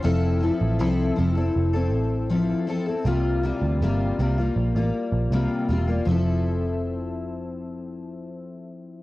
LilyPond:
<<
  \new Staff \with { instrumentName = "Steel-string acoustic guitar" } { \time 4/4 \key f \major \tempo 4 = 80 <f c' e' a'>8 <f c' e' a'>8 <f c' e' a'>8 <f c' e' a'>16 <c' e' a'>8 <c' e' a'>8. <f c' e' a'>8 <f c' e' a'>16 <c' e' a'>16 | <c g bes f'>8 <c g bes f'>8 <c g bes f'>8 <c g bes f'>16 <g bes f'>8 <g bes f'>8. <c g bes f'>8 <c g bes f'>16 <g bes f'>16 | <f c' e' a'>1 | }
  \new Staff \with { instrumentName = "Picked electric bass" } { \clef bass \time 4/4 \key f \major f,,8. a,,16 c,8 f,,8 f,,8 a,,4 r8 | c,8. d,16 g,,8 c,8 bes,,16 a,,16 r16 bes,,16 c,16 r16 e,,8 | f,,1 | }
>>